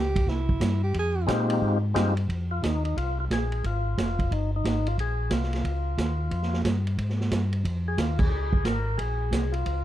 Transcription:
Already playing: tonewheel organ C#2, tenor saxophone G4
0.16 kick, ride
0.27 tonewheel organ C2, tenor saxophone E4, kick, snare
0.49 kick
0.60 tonewheel organ G2, kick, snare, hi-hat pedal, ride
0.83 tenor saxophone G4
0.94 tonewheel organ F2, kick, ride
0.99 tenor saxophone G#4
1.27 tonewheel organ A#2 G#3 C4 D#4 F4 G4, kick, snare, hi-hat pedal, ride
1.50 ride
1.62 tonewheel organ G#2, kick
1.94 tonewheel organ G2 G#3 C4 D#4 F4 G4, kick, snare, hi-hat pedal, ride
2.17 ride
2.29 tonewheel organ F2, kick, ride
2.51 tonewheel organ F4
2.62 tonewheel organ D#2 D#4, kick, snare, hi-hat pedal, ride
2.85 tonewheel organ D#4, ride
2.97 tonewheel organ C2 F4, kick, ride
3.20 tonewheel organ F4
3.31 tonewheel organ A#1 G#4, kick, snare, hi-hat pedal, ride
3.52 ride
3.64 tonewheel organ G#1 F4, kick, ride
3.98 tonewheel organ F1, kick, snare, hi-hat pedal, ride
4.19 kick, ride
4.31 tonewheel organ G1 D#4, kick, ride
4.56 tonewheel organ D#4
4.65 tonewheel organ G#1, kick, snare, hi-hat pedal, ride
4.87 tonewheel organ F4, ride
4.98 tonewheel organ A#1 G#4, kick, ride
5.30 tonewheel organ C2 F4, kick, snare, hi-hat pedal, ride
5.43 snare
5.53 snare, ride
5.64 tonewheel organ C#2, kick, ride
5.98 tonewheel organ D#2, kick, snare, hi-hat pedal, ride
6.31 tonewheel organ F2, kick, ride
6.42 snare
6.53 snare
6.65 tonewheel organ G2, kick, snare, hi-hat pedal, ride
6.87 ride
6.98 tonewheel organ G#2, kick, ride
7.09 snare
7.21 snare
7.31 tonewheel organ G2, kick, snare, hi-hat pedal, ride
7.53 ride
7.64 tonewheel organ F2, kick, ride
7.88 tonewheel organ G#4
7.97 tonewheel organ D#2 F4, kick, snare, hi-hat pedal, ride
8.19 tonewheel organ G#4, kick, crash
8.30 tonewheel organ C#2
8.53 kick
8.65 tonewheel organ G#1 A#4, kick, snare, hi-hat pedal, ride
8.98 tonewheel organ A#1 G#4, kick, ride
9.31 tonewheel organ C2, kick, snare, hi-hat pedal, ride
9.52 tonewheel organ F4, ride
9.66 tonewheel organ C#2, kick, ride

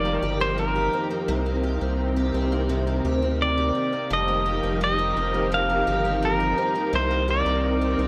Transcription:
Already playing: analog synth bass F1, twelve-string acoustic guitar F2 D#3 C4 G4, string machine F3 D#4 G4 A#4, pedal steel guitar D5
0.05 twelve-string acoustic guitar A#3
0.22 analog synth bass G1, twelve-string acoustic guitar G4
0.40 twelve-string acoustic guitar C4, pedal steel guitar C5
0.58 twelve-string acoustic guitar D#3, pedal steel guitar A#4
0.75 twelve-string acoustic guitar G4
0.93 twelve-string acoustic guitar C4
1.10 twelve-string acoustic guitar A#3
1.28 analog synth bass C2, twelve-string acoustic guitar C3, string machine C3 C4
1.46 twelve-string acoustic guitar A#3
1.63 twelve-string acoustic guitar G4
1.81 analog synth bass C2, twelve-string acoustic guitar C4
2.16 twelve-string acoustic guitar G4
2.34 analog synth bass C2, twelve-string acoustic guitar C4
2.52 twelve-string acoustic guitar A#3
2.69 twelve-string acoustic guitar C3
2.87 twelve-string acoustic guitar A#3
3.05 analog synth bass D2, twelve-string acoustic guitar G4
3.22 twelve-string acoustic guitar C4
3.42 pedal steel guitar D5
3.58 twelve-string acoustic guitar G4
3.75 twelve-string acoustic guitar C4
3.93 twelve-string acoustic guitar A#3
4.10 analog synth bass F1, twelve-string acoustic guitar F2, string machine F3 D#4 G4 A#4, pedal steel guitar D#5
4.28 twelve-string acoustic guitar A#3
4.46 twelve-string acoustic guitar G4
4.63 analog synth bass F1, twelve-string acoustic guitar C4
4.81 twelve-string acoustic guitar D#3, pedal steel guitar D#5
4.99 twelve-string acoustic guitar G4
5.17 analog synth bass F1, twelve-string acoustic guitar C4
5.34 twelve-string acoustic guitar A#3
5.52 twelve-string acoustic guitar F2, pedal steel guitar F5
5.69 twelve-string acoustic guitar A#3
5.87 analog synth bass G1, twelve-string acoustic guitar G4
6.05 twelve-string acoustic guitar C4
6.22 twelve-string acoustic guitar D#3, pedal steel guitar A#4
6.40 twelve-string acoustic guitar G4
6.58 twelve-string acoustic guitar C4
6.75 twelve-string acoustic guitar A#3
6.93 analog synth bass C2, twelve-string acoustic guitar C3, string machine C3 C4 A#4, pedal steel guitar C5
7.11 twelve-string acoustic guitar A#3
7.28 twelve-string acoustic guitar G4, pedal steel guitar D5
7.46 analog synth bass C2, twelve-string acoustic guitar C4
7.81 twelve-string acoustic guitar G4
7.99 analog synth bass C2, twelve-string acoustic guitar C4

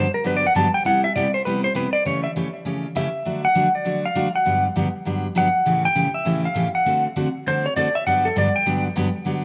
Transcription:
Already playing: electric slide guitar C5
0.14 electric slide guitar A#4
0.24 steel-string acoustic guitar G2 D3 F#3 B3 D4 G4, electric slide guitar B4
0.37 electric slide guitar D5
0.47 electric slide guitar F#5
0.55 steel-string acoustic guitar G2 D3 F#3 B3 D4 G4, electric slide guitar A5
0.74 electric slide guitar G5
0.85 steel-string acoustic guitar C3 G3 B3 E4 G4, electric slide guitar F#5
1.04 electric slide guitar E5
1.16 steel-string acoustic guitar C3 G3 B3 E4 G4, electric slide guitar D5
1.34 electric slide guitar C5
1.45 steel-string acoustic guitar C3 G3 B3 E4 G4, electric slide guitar B4
1.64 electric slide guitar C5
1.75 steel-string acoustic guitar C3 G3 B3 E4 G4, electric slide guitar B4
1.93 electric slide guitar D5
2.05 steel-string acoustic guitar C#3 E3 A3 C#4 G4, electric slide guitar C#5
2.24 electric slide guitar E5
2.36 steel-string acoustic guitar C#3 E3 A3 C#4 G4
2.65 steel-string acoustic guitar C#3 E3 A3 C#4 G4
2.95 steel-string acoustic guitar C#3 E3 A3 C#4 G4, electric slide guitar E5
3.25 steel-string acoustic guitar D3 F#3 A3 D4 F#4
3.45 electric slide guitar F#5
3.55 steel-string acoustic guitar D3 F#3 A3 D4 F#4
3.75 electric slide guitar D5
3.85 steel-string acoustic guitar D3 F#3 A3 D4 F#4
4.05 electric slide guitar F5
4.15 steel-string acoustic guitar D3 F#3 A3 D4 F#4
4.36 electric slide guitar F#5
4.45 steel-string acoustic guitar G2 D3 F#3 B3 D4 G4
4.76 steel-string acoustic guitar G2 D3 F#3 B3 D4 G4
5.05 steel-string acoustic guitar G2 D3 F#3 B3 D4 G4
5.35 steel-string acoustic guitar G2 D3 F#3 B3 D4 G4, electric slide guitar F#5
5.66 steel-string acoustic guitar A2 C#3 E3 A3 C#4 G4
5.85 electric slide guitar G5
5.95 steel-string acoustic guitar A2 C#3 E3 A3 C#4 G4
6.14 electric slide guitar E5
6.25 steel-string acoustic guitar A2 C#3 E3 A3 C#4 G4
6.45 electric slide guitar F5
6.55 steel-string acoustic guitar A2 C#3 E3 A3 C#4 G4
6.75 electric slide guitar F#5
6.86 steel-string acoustic guitar D3 A3 C4 F#4 A4
7.16 steel-string acoustic guitar D3 A3 C4 F#4 A4
7.47 steel-string acoustic guitar D3 A3 C4 F#4 A4, electric slide guitar C5
7.66 electric slide guitar C#5
7.76 steel-string acoustic guitar D3 A3 C4 F#4 A4, electric slide guitar D5
7.95 electric slide guitar E5
8.06 steel-string acoustic guitar G2 D3 F#3 B3 D4 G4, electric slide guitar F#5
8.25 electric slide guitar A4
8.36 steel-string acoustic guitar G2 D3 F#3 B3 D4 G4, electric slide guitar D5
8.56 electric slide guitar G5
8.66 steel-string acoustic guitar G2 D3 F#3 B3 D4 G4
8.96 steel-string acoustic guitar G2 D3 F#3 B3 D4 G4
9.25 steel-string acoustic guitar G2 D3 F#3 B3 D4 G4

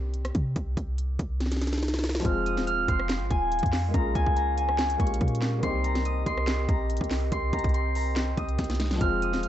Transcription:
Already playing: 808-style bass C2, grand piano G3 A#3 C4 D#4 G4
0.14 closed hi-hat
0.25 cross-stick, closed hi-hat
0.35 808-style bass C3, kick, closed hi-hat
0.56 808-style bass C2, kick, closed hi-hat
0.77 808-style bass C2, kick, closed hi-hat
0.98 closed hi-hat
1.19 808-style bass C2, kick, closed hi-hat
1.40 snare, closed hi-hat
1.46 snare
1.52 snare, closed hi-hat
1.57 snare
1.62 snare, closed hi-hat
1.67 snare, closed hi-hat
1.73 snare, closed hi-hat
1.78 snare, closed hi-hat
1.83 snare, closed hi-hat
1.88 snare, closed hi-hat
1.94 snare, closed hi-hat
1.99 snare, closed hi-hat
2.04 snare, closed hi-hat
2.09 snare
2.15 snare
2.20 grand piano F3 G#3, snare
2.25 808-style bass F1, grand piano C4 F4, flute section C4 F4 F5, harp F6, kick, closed hi-hat
2.30 grand piano G#4
2.46 harp D#6, closed hi-hat
2.57 808-style bass D#1, snare
2.67 harp F6, closed hi-hat
2.88 808-style bass F1, harp C6, kick, closed hi-hat
2.99 cross-stick
3.09 snare, clap, closed hi-hat
3.21 808-style bass G#1
3.30 808-style bass D#1, harp G#5, kick, closed hi-hat
3.52 closed hi-hat
3.59 closed hi-hat
3.63 808-style bass F2, kick, closed hi-hat
3.73 snare, clap, open hi-hat
3.89 grand piano G#3 A#3
3.93 808-style bass A#1, grand piano C#4 F4, flute section C#4 A#4, harp A#5, kick, closed hi-hat
3.98 grand piano G#4
4.15 808-style bass C#2, harp G#5, kick, closed hi-hat
4.26 kick
4.36 harp A#5, closed hi-hat
4.57 harp G#5, closed hi-hat
4.69 cross-stick
4.79 snare, clap, closed hi-hat
4.90 closed hi-hat
4.97 808-style bass A#1, grand piano G#3 A#3 C#4 F4, harp C#6, kick, closed hi-hat
5.02 grand piano G4
5.07 closed hi-hat
5.14 closed hi-hat
5.21 808-style bass A#2, kick, closed hi-hat
5.28 closed hi-hat
5.35 closed hi-hat
5.42 snare, clap, closed hi-hat
5.58 grand piano G3 A#3
5.63 808-style bass C2, grand piano C4 D#4, flute section C4 G4 D#5, harp C6, kick, closed hi-hat
5.68 grand piano G4
5.84 harp A#5, closed hi-hat
5.95 snare
6.05 harp D#6, closed hi-hat
6.26 808-style bass C2, harp C6, kick, closed hi-hat
6.37 cross-stick
6.47 snare, clap, closed hi-hat
6.69 808-style bass A#1, harp A#5, kick, closed hi-hat
6.90 closed hi-hat
6.97 closed hi-hat
7.01 808-style bass C2, kick, closed hi-hat
7.11 snare, clap, open hi-hat
7.32 808-style bass C2, harp C6, kick, closed hi-hat
7.53 808-style bass C2, harp A#5, kick, closed hi-hat
7.59 closed hi-hat
7.64 kick, closed hi-hat
7.69 closed hi-hat
7.74 harp C6, closed hi-hat
7.95 harp A#5, open hi-hat
8.16 snare, clap, closed hi-hat
8.38 808-style bass C2, harp D#6, kick, closed hi-hat
8.49 closed hi-hat
8.59 808-style bass C2, kick, snare, closed hi-hat
8.64 closed hi-hat
8.70 snare, closed hi-hat
8.75 closed hi-hat
8.80 snare, closed hi-hat
8.91 snare
8.96 grand piano F3 G#3
9.01 808-style bass F1, grand piano C4 F4, flute section F4 F5, harp F6, kick, closed hi-hat
9.06 grand piano G#4
9.22 harp D#6, closed hi-hat
9.33 808-style bass D#1, snare
9.43 harp F6, closed hi-hat

